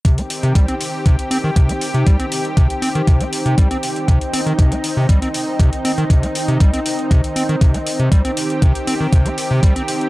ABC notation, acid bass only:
X:1
M:4/4
L:1/16
Q:1/4=119
K:Cm
V:1 name="Acid bass" clef=bass
C, C z C, G, C z2 C, z C E, C, C z C, | G, C z2 C, z C E, C, C z C, G, C z2 | C, z C E, C, C z C, G, C z2 C, z C E, | C, C z C, G, C z2 C, z C E, C, C z C, |
G, C z2 C, z C E, C, C z C, G, C z2 |]